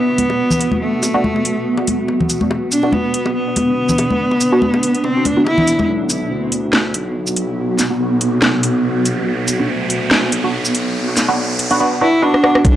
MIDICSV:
0, 0, Header, 1, 8, 480
1, 0, Start_track
1, 0, Key_signature, 2, "minor"
1, 0, Tempo, 422535
1, 927, Time_signature, 4, 2, 24, 8
1, 14498, End_track
2, 0, Start_track
2, 0, Title_t, "Ambient pad"
2, 0, Program_c, 0, 92
2, 0, Note_on_c, 0, 59, 81
2, 0, Note_on_c, 0, 66, 78
2, 2847, Note_on_c, 0, 62, 75
2, 2872, Note_off_c, 0, 66, 0
2, 6672, Note_off_c, 0, 59, 0
2, 6685, Note_on_c, 0, 66, 80
2, 6686, Note_on_c, 0, 59, 81
2, 6713, Note_off_c, 0, 62, 0
2, 13406, Note_off_c, 0, 66, 0
2, 13407, Note_off_c, 0, 59, 0
2, 14498, End_track
3, 0, Start_track
3, 0, Title_t, "Cello"
3, 0, Program_c, 1, 42
3, 0, Note_on_c, 1, 59, 99
3, 921, Note_off_c, 1, 59, 0
3, 928, Note_on_c, 1, 57, 91
3, 2322, Note_off_c, 1, 57, 0
3, 3086, Note_on_c, 1, 62, 84
3, 3326, Note_on_c, 1, 59, 87
3, 3343, Note_off_c, 1, 62, 0
3, 3800, Note_off_c, 1, 59, 0
3, 3807, Note_on_c, 1, 59, 94
3, 5729, Note_on_c, 1, 60, 96
3, 5746, Note_off_c, 1, 59, 0
3, 5970, Note_on_c, 1, 62, 98
3, 5987, Note_off_c, 1, 60, 0
3, 6203, Note_off_c, 1, 62, 0
3, 6210, Note_on_c, 1, 64, 104
3, 6655, Note_off_c, 1, 64, 0
3, 13647, Note_on_c, 1, 64, 92
3, 13889, Note_on_c, 1, 62, 96
3, 13906, Note_off_c, 1, 64, 0
3, 14358, Note_off_c, 1, 62, 0
3, 14365, Note_on_c, 1, 62, 102
3, 14498, Note_off_c, 1, 62, 0
3, 14498, End_track
4, 0, Start_track
4, 0, Title_t, "Synth stab"
4, 0, Program_c, 2, 62
4, 1299, Note_on_c, 2, 62, 90
4, 1299, Note_on_c, 2, 66, 104
4, 1300, Note_on_c, 2, 59, 93
4, 1379, Note_off_c, 2, 59, 0
4, 1379, Note_off_c, 2, 62, 0
4, 1379, Note_off_c, 2, 66, 0
4, 3218, Note_on_c, 2, 66, 78
4, 3219, Note_on_c, 2, 59, 71
4, 3219, Note_on_c, 2, 62, 66
4, 3351, Note_off_c, 2, 59, 0
4, 3351, Note_off_c, 2, 62, 0
4, 3351, Note_off_c, 2, 66, 0
4, 5138, Note_on_c, 2, 59, 93
4, 5138, Note_on_c, 2, 62, 89
4, 5138, Note_on_c, 2, 66, 106
4, 5218, Note_off_c, 2, 59, 0
4, 5218, Note_off_c, 2, 62, 0
4, 5218, Note_off_c, 2, 66, 0
4, 6099, Note_on_c, 2, 59, 95
4, 6099, Note_on_c, 2, 62, 85
4, 6099, Note_on_c, 2, 66, 106
4, 6231, Note_off_c, 2, 59, 0
4, 6231, Note_off_c, 2, 62, 0
4, 6231, Note_off_c, 2, 66, 0
4, 7059, Note_on_c, 2, 59, 72
4, 7059, Note_on_c, 2, 62, 65
4, 7059, Note_on_c, 2, 66, 81
4, 7191, Note_off_c, 2, 59, 0
4, 7191, Note_off_c, 2, 62, 0
4, 7191, Note_off_c, 2, 66, 0
4, 8979, Note_on_c, 2, 59, 101
4, 8979, Note_on_c, 2, 62, 92
4, 8979, Note_on_c, 2, 66, 110
4, 9059, Note_off_c, 2, 59, 0
4, 9059, Note_off_c, 2, 62, 0
4, 9059, Note_off_c, 2, 66, 0
4, 10898, Note_on_c, 2, 62, 64
4, 10899, Note_on_c, 2, 59, 69
4, 10899, Note_on_c, 2, 66, 75
4, 11031, Note_off_c, 2, 59, 0
4, 11031, Note_off_c, 2, 62, 0
4, 11031, Note_off_c, 2, 66, 0
4, 11859, Note_on_c, 2, 59, 68
4, 11859, Note_on_c, 2, 62, 66
4, 11860, Note_on_c, 2, 66, 76
4, 11991, Note_off_c, 2, 59, 0
4, 11991, Note_off_c, 2, 62, 0
4, 11991, Note_off_c, 2, 66, 0
4, 12819, Note_on_c, 2, 59, 74
4, 12819, Note_on_c, 2, 62, 65
4, 12819, Note_on_c, 2, 66, 81
4, 12910, Note_off_c, 2, 59, 0
4, 12910, Note_off_c, 2, 62, 0
4, 12910, Note_off_c, 2, 66, 0
4, 13299, Note_on_c, 2, 59, 76
4, 13299, Note_on_c, 2, 62, 69
4, 13299, Note_on_c, 2, 66, 82
4, 13390, Note_off_c, 2, 59, 0
4, 13390, Note_off_c, 2, 62, 0
4, 13390, Note_off_c, 2, 66, 0
4, 13407, Note_on_c, 2, 59, 73
4, 13407, Note_on_c, 2, 62, 66
4, 13407, Note_on_c, 2, 66, 81
4, 13558, Note_off_c, 2, 66, 0
4, 13559, Note_off_c, 2, 59, 0
4, 13559, Note_off_c, 2, 62, 0
4, 13647, Note_on_c, 2, 62, 67
4, 13647, Note_on_c, 2, 66, 85
4, 13648, Note_on_c, 2, 59, 77
4, 13799, Note_off_c, 2, 59, 0
4, 13799, Note_off_c, 2, 62, 0
4, 13799, Note_off_c, 2, 66, 0
4, 13886, Note_on_c, 2, 59, 82
4, 13886, Note_on_c, 2, 62, 72
4, 13886, Note_on_c, 2, 66, 88
4, 14038, Note_off_c, 2, 59, 0
4, 14038, Note_off_c, 2, 62, 0
4, 14038, Note_off_c, 2, 66, 0
4, 14126, Note_on_c, 2, 59, 80
4, 14126, Note_on_c, 2, 62, 73
4, 14126, Note_on_c, 2, 66, 87
4, 14278, Note_off_c, 2, 59, 0
4, 14278, Note_off_c, 2, 62, 0
4, 14278, Note_off_c, 2, 66, 0
4, 14498, End_track
5, 0, Start_track
5, 0, Title_t, "Sub bass"
5, 0, Program_c, 3, 38
5, 6685, Note_on_c, 3, 35, 95
5, 7149, Note_off_c, 3, 35, 0
5, 7166, Note_on_c, 3, 38, 94
5, 7869, Note_off_c, 3, 38, 0
5, 7886, Note_on_c, 3, 35, 92
5, 8829, Note_off_c, 3, 35, 0
5, 9087, Note_on_c, 3, 35, 100
5, 10030, Note_off_c, 3, 35, 0
5, 10046, Note_on_c, 3, 35, 96
5, 10509, Note_off_c, 3, 35, 0
5, 10527, Note_on_c, 3, 35, 92
5, 10990, Note_off_c, 3, 35, 0
5, 11005, Note_on_c, 3, 38, 95
5, 11709, Note_off_c, 3, 38, 0
5, 11727, Note_on_c, 3, 35, 90
5, 12670, Note_off_c, 3, 35, 0
5, 12687, Note_on_c, 3, 35, 95
5, 13407, Note_off_c, 3, 35, 0
5, 14366, Note_on_c, 3, 35, 96
5, 14498, Note_off_c, 3, 35, 0
5, 14498, End_track
6, 0, Start_track
6, 0, Title_t, "Impact"
6, 0, Program_c, 4, 103
6, 14367, Note_on_c, 4, 60, 77
6, 14498, Note_off_c, 4, 60, 0
6, 14498, End_track
7, 0, Start_track
7, 0, Title_t, "Riser"
7, 0, Program_c, 5, 103
7, 6687, Note_on_c, 5, 60, 76
7, 13407, Note_off_c, 5, 60, 0
7, 14498, End_track
8, 0, Start_track
8, 0, Title_t, "Drums"
8, 208, Note_on_c, 9, 42, 76
8, 209, Note_on_c, 9, 63, 59
8, 321, Note_off_c, 9, 42, 0
8, 322, Note_off_c, 9, 63, 0
8, 339, Note_on_c, 9, 60, 64
8, 452, Note_off_c, 9, 60, 0
8, 573, Note_on_c, 9, 64, 80
8, 580, Note_on_c, 9, 82, 75
8, 675, Note_on_c, 9, 60, 46
8, 687, Note_off_c, 9, 64, 0
8, 688, Note_on_c, 9, 42, 68
8, 694, Note_off_c, 9, 82, 0
8, 789, Note_off_c, 9, 60, 0
8, 801, Note_off_c, 9, 42, 0
8, 812, Note_on_c, 9, 63, 89
8, 926, Note_off_c, 9, 63, 0
8, 1166, Note_on_c, 9, 60, 70
8, 1168, Note_on_c, 9, 42, 70
8, 1168, Note_on_c, 9, 82, 81
8, 1280, Note_off_c, 9, 60, 0
8, 1281, Note_off_c, 9, 42, 0
8, 1281, Note_off_c, 9, 82, 0
8, 1411, Note_on_c, 9, 63, 76
8, 1525, Note_off_c, 9, 63, 0
8, 1544, Note_on_c, 9, 60, 46
8, 1648, Note_on_c, 9, 42, 70
8, 1658, Note_off_c, 9, 60, 0
8, 1761, Note_off_c, 9, 42, 0
8, 2016, Note_on_c, 9, 60, 70
8, 2128, Note_on_c, 9, 42, 74
8, 2130, Note_off_c, 9, 60, 0
8, 2134, Note_on_c, 9, 63, 59
8, 2242, Note_off_c, 9, 42, 0
8, 2247, Note_off_c, 9, 63, 0
8, 2367, Note_on_c, 9, 60, 48
8, 2480, Note_off_c, 9, 60, 0
8, 2505, Note_on_c, 9, 64, 82
8, 2608, Note_on_c, 9, 42, 66
8, 2608, Note_on_c, 9, 82, 50
8, 2618, Note_off_c, 9, 64, 0
8, 2721, Note_off_c, 9, 42, 0
8, 2721, Note_off_c, 9, 82, 0
8, 2736, Note_on_c, 9, 63, 81
8, 2847, Note_on_c, 9, 60, 84
8, 2850, Note_off_c, 9, 63, 0
8, 2961, Note_off_c, 9, 60, 0
8, 3087, Note_on_c, 9, 42, 74
8, 3087, Note_on_c, 9, 82, 76
8, 3200, Note_off_c, 9, 42, 0
8, 3200, Note_off_c, 9, 82, 0
8, 3214, Note_on_c, 9, 60, 49
8, 3322, Note_on_c, 9, 63, 84
8, 3327, Note_off_c, 9, 60, 0
8, 3436, Note_off_c, 9, 63, 0
8, 3566, Note_on_c, 9, 42, 72
8, 3680, Note_off_c, 9, 42, 0
8, 3699, Note_on_c, 9, 60, 76
8, 3812, Note_off_c, 9, 60, 0
8, 4046, Note_on_c, 9, 42, 74
8, 4050, Note_on_c, 9, 63, 57
8, 4053, Note_on_c, 9, 60, 54
8, 4159, Note_off_c, 9, 42, 0
8, 4163, Note_off_c, 9, 63, 0
8, 4167, Note_off_c, 9, 60, 0
8, 4418, Note_on_c, 9, 82, 72
8, 4420, Note_on_c, 9, 64, 78
8, 4524, Note_on_c, 9, 42, 69
8, 4528, Note_on_c, 9, 60, 79
8, 4531, Note_off_c, 9, 82, 0
8, 4533, Note_off_c, 9, 64, 0
8, 4638, Note_off_c, 9, 42, 0
8, 4641, Note_off_c, 9, 60, 0
8, 4663, Note_on_c, 9, 63, 76
8, 4777, Note_off_c, 9, 63, 0
8, 4900, Note_on_c, 9, 60, 53
8, 5006, Note_on_c, 9, 42, 77
8, 5006, Note_on_c, 9, 82, 71
8, 5014, Note_off_c, 9, 60, 0
8, 5119, Note_off_c, 9, 42, 0
8, 5119, Note_off_c, 9, 82, 0
8, 5246, Note_on_c, 9, 63, 82
8, 5359, Note_off_c, 9, 63, 0
8, 5382, Note_on_c, 9, 60, 81
8, 5486, Note_on_c, 9, 42, 77
8, 5495, Note_off_c, 9, 60, 0
8, 5600, Note_off_c, 9, 42, 0
8, 5618, Note_on_c, 9, 42, 35
8, 5724, Note_on_c, 9, 60, 55
8, 5732, Note_off_c, 9, 42, 0
8, 5837, Note_off_c, 9, 60, 0
8, 5966, Note_on_c, 9, 42, 78
8, 5968, Note_on_c, 9, 63, 64
8, 6080, Note_off_c, 9, 42, 0
8, 6082, Note_off_c, 9, 63, 0
8, 6209, Note_on_c, 9, 60, 77
8, 6323, Note_off_c, 9, 60, 0
8, 6336, Note_on_c, 9, 64, 91
8, 6447, Note_on_c, 9, 42, 70
8, 6447, Note_on_c, 9, 82, 47
8, 6450, Note_off_c, 9, 64, 0
8, 6560, Note_off_c, 9, 42, 0
8, 6560, Note_off_c, 9, 82, 0
8, 6576, Note_on_c, 9, 60, 50
8, 6584, Note_on_c, 9, 63, 87
8, 6689, Note_off_c, 9, 60, 0
8, 6697, Note_off_c, 9, 63, 0
8, 6926, Note_on_c, 9, 42, 80
8, 6926, Note_on_c, 9, 82, 76
8, 7040, Note_off_c, 9, 42, 0
8, 7040, Note_off_c, 9, 82, 0
8, 7406, Note_on_c, 9, 42, 80
8, 7520, Note_off_c, 9, 42, 0
8, 7646, Note_on_c, 9, 38, 114
8, 7759, Note_off_c, 9, 38, 0
8, 7886, Note_on_c, 9, 42, 83
8, 8000, Note_off_c, 9, 42, 0
8, 8258, Note_on_c, 9, 82, 75
8, 8366, Note_on_c, 9, 42, 76
8, 8372, Note_off_c, 9, 82, 0
8, 8480, Note_off_c, 9, 42, 0
8, 8847, Note_on_c, 9, 38, 36
8, 8847, Note_on_c, 9, 42, 81
8, 8847, Note_on_c, 9, 82, 72
8, 8960, Note_off_c, 9, 38, 0
8, 8960, Note_off_c, 9, 42, 0
8, 8960, Note_off_c, 9, 82, 0
8, 9326, Note_on_c, 9, 42, 84
8, 9440, Note_off_c, 9, 42, 0
8, 9565, Note_on_c, 9, 38, 120
8, 9679, Note_off_c, 9, 38, 0
8, 9806, Note_on_c, 9, 42, 89
8, 9919, Note_off_c, 9, 42, 0
8, 10286, Note_on_c, 9, 42, 78
8, 10286, Note_on_c, 9, 82, 47
8, 10400, Note_off_c, 9, 42, 0
8, 10400, Note_off_c, 9, 82, 0
8, 10767, Note_on_c, 9, 42, 85
8, 10767, Note_on_c, 9, 82, 76
8, 10881, Note_off_c, 9, 42, 0
8, 10881, Note_off_c, 9, 82, 0
8, 11246, Note_on_c, 9, 42, 81
8, 11360, Note_off_c, 9, 42, 0
8, 11486, Note_on_c, 9, 38, 124
8, 11600, Note_off_c, 9, 38, 0
8, 11727, Note_on_c, 9, 42, 84
8, 11840, Note_off_c, 9, 42, 0
8, 12099, Note_on_c, 9, 82, 77
8, 12208, Note_on_c, 9, 42, 77
8, 12212, Note_off_c, 9, 82, 0
8, 12321, Note_off_c, 9, 42, 0
8, 12687, Note_on_c, 9, 38, 38
8, 12687, Note_on_c, 9, 42, 78
8, 12687, Note_on_c, 9, 82, 83
8, 12800, Note_off_c, 9, 38, 0
8, 12800, Note_off_c, 9, 42, 0
8, 12800, Note_off_c, 9, 82, 0
8, 13167, Note_on_c, 9, 42, 81
8, 13281, Note_off_c, 9, 42, 0
8, 13299, Note_on_c, 9, 42, 35
8, 13412, Note_off_c, 9, 42, 0
8, 14019, Note_on_c, 9, 37, 53
8, 14128, Note_off_c, 9, 37, 0
8, 14128, Note_on_c, 9, 37, 77
8, 14241, Note_off_c, 9, 37, 0
8, 14259, Note_on_c, 9, 37, 80
8, 14367, Note_on_c, 9, 36, 124
8, 14368, Note_on_c, 9, 42, 81
8, 14373, Note_off_c, 9, 37, 0
8, 14480, Note_off_c, 9, 36, 0
8, 14481, Note_off_c, 9, 42, 0
8, 14498, End_track
0, 0, End_of_file